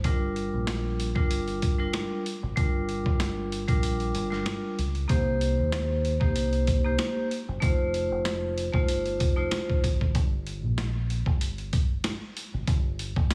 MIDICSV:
0, 0, Header, 1, 4, 480
1, 0, Start_track
1, 0, Tempo, 631579
1, 33, Time_signature, 4, 2, 24, 8
1, 10138, End_track
2, 0, Start_track
2, 0, Title_t, "Vibraphone"
2, 0, Program_c, 0, 11
2, 30, Note_on_c, 0, 55, 97
2, 35, Note_on_c, 0, 62, 80
2, 40, Note_on_c, 0, 65, 86
2, 44, Note_on_c, 0, 70, 97
2, 810, Note_off_c, 0, 55, 0
2, 812, Note_off_c, 0, 62, 0
2, 814, Note_off_c, 0, 65, 0
2, 816, Note_off_c, 0, 70, 0
2, 875, Note_on_c, 0, 55, 97
2, 879, Note_on_c, 0, 62, 87
2, 885, Note_on_c, 0, 65, 91
2, 889, Note_on_c, 0, 70, 107
2, 1318, Note_off_c, 0, 55, 0
2, 1320, Note_off_c, 0, 62, 0
2, 1323, Note_off_c, 0, 65, 0
2, 1325, Note_off_c, 0, 70, 0
2, 1354, Note_on_c, 0, 55, 97
2, 1359, Note_on_c, 0, 62, 90
2, 1364, Note_on_c, 0, 65, 91
2, 1368, Note_on_c, 0, 70, 108
2, 1682, Note_off_c, 0, 55, 0
2, 1685, Note_off_c, 0, 62, 0
2, 1687, Note_off_c, 0, 65, 0
2, 1689, Note_off_c, 0, 70, 0
2, 1946, Note_on_c, 0, 55, 106
2, 1951, Note_on_c, 0, 62, 82
2, 1955, Note_on_c, 0, 65, 90
2, 1961, Note_on_c, 0, 70, 106
2, 2727, Note_off_c, 0, 55, 0
2, 2730, Note_off_c, 0, 62, 0
2, 2732, Note_off_c, 0, 65, 0
2, 2735, Note_off_c, 0, 70, 0
2, 2794, Note_on_c, 0, 55, 100
2, 2799, Note_on_c, 0, 62, 86
2, 2803, Note_on_c, 0, 65, 85
2, 2808, Note_on_c, 0, 70, 110
2, 3237, Note_off_c, 0, 55, 0
2, 3240, Note_off_c, 0, 62, 0
2, 3242, Note_off_c, 0, 65, 0
2, 3244, Note_off_c, 0, 70, 0
2, 3271, Note_on_c, 0, 55, 101
2, 3276, Note_on_c, 0, 62, 90
2, 3281, Note_on_c, 0, 65, 81
2, 3285, Note_on_c, 0, 70, 108
2, 3600, Note_off_c, 0, 55, 0
2, 3603, Note_off_c, 0, 62, 0
2, 3605, Note_off_c, 0, 65, 0
2, 3608, Note_off_c, 0, 70, 0
2, 3859, Note_on_c, 0, 58, 102
2, 3864, Note_on_c, 0, 63, 87
2, 3868, Note_on_c, 0, 67, 91
2, 3873, Note_on_c, 0, 72, 115
2, 4644, Note_off_c, 0, 58, 0
2, 4646, Note_off_c, 0, 63, 0
2, 4648, Note_off_c, 0, 67, 0
2, 4651, Note_off_c, 0, 72, 0
2, 4715, Note_on_c, 0, 58, 91
2, 4719, Note_on_c, 0, 63, 92
2, 4723, Note_on_c, 0, 67, 84
2, 4728, Note_on_c, 0, 72, 107
2, 5158, Note_off_c, 0, 58, 0
2, 5159, Note_off_c, 0, 63, 0
2, 5162, Note_off_c, 0, 67, 0
2, 5164, Note_off_c, 0, 72, 0
2, 5203, Note_on_c, 0, 58, 99
2, 5206, Note_on_c, 0, 63, 87
2, 5212, Note_on_c, 0, 67, 87
2, 5216, Note_on_c, 0, 72, 106
2, 5526, Note_off_c, 0, 58, 0
2, 5528, Note_off_c, 0, 63, 0
2, 5531, Note_off_c, 0, 67, 0
2, 5533, Note_off_c, 0, 72, 0
2, 5778, Note_on_c, 0, 57, 99
2, 5782, Note_on_c, 0, 63, 90
2, 5787, Note_on_c, 0, 65, 89
2, 5790, Note_on_c, 0, 72, 110
2, 6563, Note_off_c, 0, 57, 0
2, 6565, Note_off_c, 0, 63, 0
2, 6568, Note_off_c, 0, 65, 0
2, 6569, Note_off_c, 0, 72, 0
2, 6632, Note_on_c, 0, 57, 96
2, 6637, Note_on_c, 0, 63, 90
2, 6643, Note_on_c, 0, 65, 93
2, 6647, Note_on_c, 0, 72, 106
2, 7076, Note_off_c, 0, 57, 0
2, 7079, Note_off_c, 0, 63, 0
2, 7082, Note_off_c, 0, 65, 0
2, 7084, Note_off_c, 0, 72, 0
2, 7116, Note_on_c, 0, 57, 91
2, 7119, Note_on_c, 0, 63, 100
2, 7124, Note_on_c, 0, 65, 89
2, 7129, Note_on_c, 0, 72, 111
2, 7443, Note_off_c, 0, 57, 0
2, 7445, Note_off_c, 0, 63, 0
2, 7447, Note_off_c, 0, 65, 0
2, 7449, Note_off_c, 0, 72, 0
2, 10138, End_track
3, 0, Start_track
3, 0, Title_t, "Fingered electric bass"
3, 0, Program_c, 1, 33
3, 36, Note_on_c, 1, 31, 111
3, 375, Note_off_c, 1, 31, 0
3, 408, Note_on_c, 1, 34, 89
3, 856, Note_off_c, 1, 34, 0
3, 881, Note_on_c, 1, 31, 89
3, 1442, Note_off_c, 1, 31, 0
3, 1847, Note_on_c, 1, 32, 95
3, 1945, Note_off_c, 1, 32, 0
3, 1956, Note_on_c, 1, 31, 111
3, 2295, Note_off_c, 1, 31, 0
3, 2326, Note_on_c, 1, 31, 90
3, 2775, Note_off_c, 1, 31, 0
3, 2801, Note_on_c, 1, 34, 86
3, 3121, Note_off_c, 1, 34, 0
3, 3154, Note_on_c, 1, 31, 95
3, 3372, Note_off_c, 1, 31, 0
3, 3636, Note_on_c, 1, 37, 92
3, 3853, Note_off_c, 1, 37, 0
3, 3875, Note_on_c, 1, 36, 113
3, 4215, Note_off_c, 1, 36, 0
3, 4247, Note_on_c, 1, 39, 89
3, 4696, Note_off_c, 1, 39, 0
3, 4720, Note_on_c, 1, 36, 96
3, 5281, Note_off_c, 1, 36, 0
3, 5688, Note_on_c, 1, 30, 87
3, 5785, Note_off_c, 1, 30, 0
3, 5794, Note_on_c, 1, 29, 100
3, 6135, Note_off_c, 1, 29, 0
3, 6168, Note_on_c, 1, 29, 82
3, 6616, Note_off_c, 1, 29, 0
3, 6641, Note_on_c, 1, 31, 99
3, 6997, Note_off_c, 1, 31, 0
3, 6997, Note_on_c, 1, 29, 96
3, 7214, Note_off_c, 1, 29, 0
3, 7479, Note_on_c, 1, 32, 106
3, 7694, Note_off_c, 1, 32, 0
3, 7716, Note_on_c, 1, 31, 112
3, 8088, Note_off_c, 1, 31, 0
3, 8088, Note_on_c, 1, 34, 92
3, 8536, Note_off_c, 1, 34, 0
3, 8561, Note_on_c, 1, 31, 91
3, 9122, Note_off_c, 1, 31, 0
3, 9529, Note_on_c, 1, 32, 88
3, 9626, Note_off_c, 1, 32, 0
3, 9635, Note_on_c, 1, 31, 119
3, 9975, Note_off_c, 1, 31, 0
3, 10006, Note_on_c, 1, 31, 91
3, 10138, Note_off_c, 1, 31, 0
3, 10138, End_track
4, 0, Start_track
4, 0, Title_t, "Drums"
4, 31, Note_on_c, 9, 42, 75
4, 34, Note_on_c, 9, 36, 112
4, 107, Note_off_c, 9, 42, 0
4, 110, Note_off_c, 9, 36, 0
4, 274, Note_on_c, 9, 42, 69
4, 350, Note_off_c, 9, 42, 0
4, 510, Note_on_c, 9, 38, 105
4, 513, Note_on_c, 9, 40, 84
4, 513, Note_on_c, 9, 42, 94
4, 519, Note_on_c, 9, 26, 72
4, 586, Note_off_c, 9, 38, 0
4, 589, Note_off_c, 9, 40, 0
4, 589, Note_off_c, 9, 42, 0
4, 595, Note_off_c, 9, 26, 0
4, 757, Note_on_c, 9, 42, 80
4, 833, Note_off_c, 9, 42, 0
4, 879, Note_on_c, 9, 36, 97
4, 955, Note_off_c, 9, 36, 0
4, 993, Note_on_c, 9, 42, 108
4, 1069, Note_off_c, 9, 42, 0
4, 1122, Note_on_c, 9, 42, 48
4, 1198, Note_off_c, 9, 42, 0
4, 1233, Note_on_c, 9, 42, 86
4, 1235, Note_on_c, 9, 36, 96
4, 1309, Note_off_c, 9, 42, 0
4, 1311, Note_off_c, 9, 36, 0
4, 1470, Note_on_c, 9, 26, 68
4, 1470, Note_on_c, 9, 42, 82
4, 1472, Note_on_c, 9, 38, 113
4, 1474, Note_on_c, 9, 40, 91
4, 1546, Note_off_c, 9, 26, 0
4, 1546, Note_off_c, 9, 42, 0
4, 1548, Note_off_c, 9, 38, 0
4, 1550, Note_off_c, 9, 40, 0
4, 1718, Note_on_c, 9, 42, 85
4, 1794, Note_off_c, 9, 42, 0
4, 1953, Note_on_c, 9, 42, 74
4, 1954, Note_on_c, 9, 36, 117
4, 2029, Note_off_c, 9, 42, 0
4, 2030, Note_off_c, 9, 36, 0
4, 2194, Note_on_c, 9, 42, 69
4, 2270, Note_off_c, 9, 42, 0
4, 2325, Note_on_c, 9, 36, 92
4, 2401, Note_off_c, 9, 36, 0
4, 2431, Note_on_c, 9, 38, 102
4, 2433, Note_on_c, 9, 40, 82
4, 2434, Note_on_c, 9, 42, 92
4, 2439, Note_on_c, 9, 26, 69
4, 2507, Note_off_c, 9, 38, 0
4, 2509, Note_off_c, 9, 40, 0
4, 2510, Note_off_c, 9, 42, 0
4, 2515, Note_off_c, 9, 26, 0
4, 2677, Note_on_c, 9, 42, 77
4, 2753, Note_off_c, 9, 42, 0
4, 2799, Note_on_c, 9, 36, 95
4, 2800, Note_on_c, 9, 42, 57
4, 2875, Note_off_c, 9, 36, 0
4, 2876, Note_off_c, 9, 42, 0
4, 2911, Note_on_c, 9, 42, 110
4, 2987, Note_off_c, 9, 42, 0
4, 3040, Note_on_c, 9, 42, 47
4, 3116, Note_off_c, 9, 42, 0
4, 3151, Note_on_c, 9, 42, 86
4, 3227, Note_off_c, 9, 42, 0
4, 3283, Note_on_c, 9, 38, 36
4, 3359, Note_off_c, 9, 38, 0
4, 3388, Note_on_c, 9, 42, 87
4, 3390, Note_on_c, 9, 26, 71
4, 3390, Note_on_c, 9, 38, 113
4, 3392, Note_on_c, 9, 40, 86
4, 3464, Note_off_c, 9, 42, 0
4, 3466, Note_off_c, 9, 26, 0
4, 3466, Note_off_c, 9, 38, 0
4, 3468, Note_off_c, 9, 40, 0
4, 3638, Note_on_c, 9, 42, 84
4, 3714, Note_off_c, 9, 42, 0
4, 3762, Note_on_c, 9, 42, 51
4, 3838, Note_off_c, 9, 42, 0
4, 3871, Note_on_c, 9, 42, 78
4, 3873, Note_on_c, 9, 36, 118
4, 3947, Note_off_c, 9, 42, 0
4, 3949, Note_off_c, 9, 36, 0
4, 4113, Note_on_c, 9, 42, 69
4, 4189, Note_off_c, 9, 42, 0
4, 4350, Note_on_c, 9, 38, 109
4, 4353, Note_on_c, 9, 40, 85
4, 4353, Note_on_c, 9, 42, 93
4, 4359, Note_on_c, 9, 26, 74
4, 4426, Note_off_c, 9, 38, 0
4, 4429, Note_off_c, 9, 40, 0
4, 4429, Note_off_c, 9, 42, 0
4, 4435, Note_off_c, 9, 26, 0
4, 4596, Note_on_c, 9, 42, 76
4, 4672, Note_off_c, 9, 42, 0
4, 4718, Note_on_c, 9, 36, 99
4, 4794, Note_off_c, 9, 36, 0
4, 4831, Note_on_c, 9, 42, 113
4, 4907, Note_off_c, 9, 42, 0
4, 4961, Note_on_c, 9, 42, 50
4, 5037, Note_off_c, 9, 42, 0
4, 5072, Note_on_c, 9, 42, 88
4, 5074, Note_on_c, 9, 36, 100
4, 5148, Note_off_c, 9, 42, 0
4, 5150, Note_off_c, 9, 36, 0
4, 5308, Note_on_c, 9, 42, 86
4, 5310, Note_on_c, 9, 26, 74
4, 5310, Note_on_c, 9, 38, 119
4, 5313, Note_on_c, 9, 40, 90
4, 5384, Note_off_c, 9, 42, 0
4, 5386, Note_off_c, 9, 26, 0
4, 5386, Note_off_c, 9, 38, 0
4, 5389, Note_off_c, 9, 40, 0
4, 5558, Note_on_c, 9, 42, 84
4, 5634, Note_off_c, 9, 42, 0
4, 5792, Note_on_c, 9, 42, 78
4, 5793, Note_on_c, 9, 36, 121
4, 5868, Note_off_c, 9, 42, 0
4, 5869, Note_off_c, 9, 36, 0
4, 6035, Note_on_c, 9, 42, 68
4, 6111, Note_off_c, 9, 42, 0
4, 6271, Note_on_c, 9, 38, 104
4, 6274, Note_on_c, 9, 40, 85
4, 6274, Note_on_c, 9, 42, 94
4, 6279, Note_on_c, 9, 26, 75
4, 6347, Note_off_c, 9, 38, 0
4, 6350, Note_off_c, 9, 40, 0
4, 6350, Note_off_c, 9, 42, 0
4, 6355, Note_off_c, 9, 26, 0
4, 6518, Note_on_c, 9, 42, 80
4, 6594, Note_off_c, 9, 42, 0
4, 6639, Note_on_c, 9, 36, 95
4, 6715, Note_off_c, 9, 36, 0
4, 6752, Note_on_c, 9, 42, 111
4, 6828, Note_off_c, 9, 42, 0
4, 6882, Note_on_c, 9, 42, 49
4, 6958, Note_off_c, 9, 42, 0
4, 6994, Note_on_c, 9, 42, 91
4, 6996, Note_on_c, 9, 36, 102
4, 7070, Note_off_c, 9, 42, 0
4, 7072, Note_off_c, 9, 36, 0
4, 7230, Note_on_c, 9, 26, 71
4, 7230, Note_on_c, 9, 42, 86
4, 7232, Note_on_c, 9, 38, 113
4, 7235, Note_on_c, 9, 40, 90
4, 7306, Note_off_c, 9, 26, 0
4, 7306, Note_off_c, 9, 42, 0
4, 7308, Note_off_c, 9, 38, 0
4, 7311, Note_off_c, 9, 40, 0
4, 7369, Note_on_c, 9, 36, 93
4, 7445, Note_off_c, 9, 36, 0
4, 7477, Note_on_c, 9, 36, 94
4, 7478, Note_on_c, 9, 42, 88
4, 7553, Note_off_c, 9, 36, 0
4, 7554, Note_off_c, 9, 42, 0
4, 7609, Note_on_c, 9, 36, 98
4, 7685, Note_off_c, 9, 36, 0
4, 7712, Note_on_c, 9, 42, 80
4, 7714, Note_on_c, 9, 36, 119
4, 7788, Note_off_c, 9, 42, 0
4, 7790, Note_off_c, 9, 36, 0
4, 7954, Note_on_c, 9, 42, 70
4, 8030, Note_off_c, 9, 42, 0
4, 8191, Note_on_c, 9, 38, 104
4, 8194, Note_on_c, 9, 40, 86
4, 8194, Note_on_c, 9, 42, 95
4, 8199, Note_on_c, 9, 26, 73
4, 8267, Note_off_c, 9, 38, 0
4, 8270, Note_off_c, 9, 40, 0
4, 8270, Note_off_c, 9, 42, 0
4, 8275, Note_off_c, 9, 26, 0
4, 8437, Note_on_c, 9, 42, 77
4, 8513, Note_off_c, 9, 42, 0
4, 8559, Note_on_c, 9, 36, 96
4, 8635, Note_off_c, 9, 36, 0
4, 8673, Note_on_c, 9, 42, 112
4, 8749, Note_off_c, 9, 42, 0
4, 8803, Note_on_c, 9, 42, 51
4, 8879, Note_off_c, 9, 42, 0
4, 8914, Note_on_c, 9, 42, 88
4, 8915, Note_on_c, 9, 36, 102
4, 8990, Note_off_c, 9, 42, 0
4, 8991, Note_off_c, 9, 36, 0
4, 9150, Note_on_c, 9, 26, 73
4, 9150, Note_on_c, 9, 42, 89
4, 9152, Note_on_c, 9, 38, 118
4, 9155, Note_on_c, 9, 40, 88
4, 9226, Note_off_c, 9, 26, 0
4, 9226, Note_off_c, 9, 42, 0
4, 9228, Note_off_c, 9, 38, 0
4, 9231, Note_off_c, 9, 40, 0
4, 9398, Note_on_c, 9, 42, 84
4, 9474, Note_off_c, 9, 42, 0
4, 9633, Note_on_c, 9, 36, 119
4, 9633, Note_on_c, 9, 42, 80
4, 9709, Note_off_c, 9, 36, 0
4, 9709, Note_off_c, 9, 42, 0
4, 9874, Note_on_c, 9, 42, 71
4, 9950, Note_off_c, 9, 42, 0
4, 10004, Note_on_c, 9, 36, 93
4, 10080, Note_off_c, 9, 36, 0
4, 10112, Note_on_c, 9, 38, 104
4, 10115, Note_on_c, 9, 40, 85
4, 10115, Note_on_c, 9, 42, 99
4, 10138, Note_off_c, 9, 38, 0
4, 10138, Note_off_c, 9, 40, 0
4, 10138, Note_off_c, 9, 42, 0
4, 10138, End_track
0, 0, End_of_file